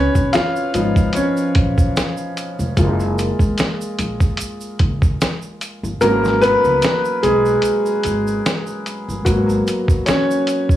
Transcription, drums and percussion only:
0.15 kick, shaker
0.33 snare, closed hi-hat, shaker
0.56 shaker
0.74 closed hi-hat, shaker
0.96 kick, shaker
1.13 closed hi-hat, shaker
1.37 shaker
1.55 kick, closed hi-hat
1.78 kick, shaker
1.97 snare, closed hi-hat, shaker
2.17 shaker
2.37 closed hi-hat, shaker
2.60 shaker
2.77 kick, closed hi-hat, shaker
3.00 shaker
3.18 closed hi-hat, shaker
3.39 kick, shaker
3.58 snare, closed hi-hat, shaker
3.81 shaker
3.99 closed hi-hat, shaker
4.20 kick, shaker
4.37 closed hi-hat, shaker
4.61 shaker
4.79 kick, closed hi-hat
5.02 kick, shaker
5.21 snare, closed hi-hat, shaker
5.42 shaker
5.61 closed hi-hat, shaker
5.84 shaker
6.01 closed hi-hat, shaker
6.25 snare, shaker
6.42 closed hi-hat, shaker
6.65 shaker
6.82 snare, closed hi-hat, shaker
7.05 shaker
7.23 closed hi-hat, shaker
7.46 shaker
7.62 closed hi-hat, shaker
7.86 shaker
8.03 closed hi-hat, shaker
8.27 shaker
8.46 snare, closed hi-hat, shaker
8.67 shaker
8.86 closed hi-hat, shaker
9.09 shaker
9.26 kick, closed hi-hat, shaker
9.49 shaker
9.67 closed hi-hat, shaker
9.88 kick, shaker
10.06 snare, closed hi-hat, shaker
10.31 shaker
10.47 closed hi-hat, shaker
10.69 kick, shaker

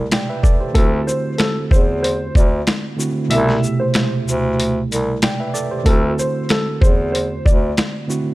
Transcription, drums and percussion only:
0.12 snare, closed hi-hat
0.44 kick, shaker
0.75 kick, closed hi-hat
1.08 shaker
1.38 snare, closed hi-hat
1.71 kick, shaker
2.04 closed hi-hat
2.35 kick, shaker
2.67 snare, closed hi-hat
3.00 shaker
3.31 closed hi-hat
3.49 snare
3.64 shaker
3.94 snare, closed hi-hat
4.28 shaker
4.60 closed hi-hat
4.92 closed hi-hat, shaker
5.22 snare, closed hi-hat
5.55 shaker
5.86 kick, closed hi-hat
6.19 shaker
6.49 snare, closed hi-hat
6.82 kick, shaker
7.15 closed hi-hat
7.46 kick, shaker
7.77 snare, closed hi-hat
8.10 shaker

